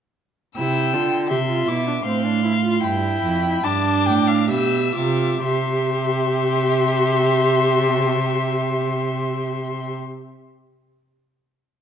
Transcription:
0.56 cello C3, viola E4, violin G5 E6
0.93 cello D3, viola F4
1.29 cello C3, viola G4, violin E5 C6
1.49 viola F4
1.67 cello B2, viola E4, violin D6
1.87 viola D4
2.05 cello A2, viola C4, violin F5 C6
2.25 viola D4
2.44 viola E4
2.64 viola F4
2.83 cello G2, viola E4, violin G5 B5
3.23 cello F2
3.63 cello G2, viola D4, violin A5 D6
4.06 cello A2, violin G5
4.27 violin F5
4.50 cello B2, viola G4, violin E5 E6
4.96 cello C3, viola F4, violin D6
5.44 cello C3, viola G4, violin E5 C6

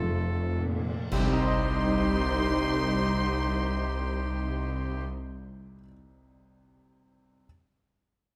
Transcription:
Already playing: double bass section F1, grand piano C3, french horn section A3 F4, viola section A3 A4, clarinet F4, oboe A4
0.09 cello section F2
0.60 cello section A#2
1.11 double bass section C2, cello section C2, grand piano C2, viola section G3 D#4, french horn section G3 D#4, clarinet D#4, oboe G4, violin section C5 C6, flute C6, concert bass drum, crash
1.19 grand piano C3
1.26 grand piano G3
1.33 grand piano D#4
1.40 grand piano C5
1.48 grand piano D#5

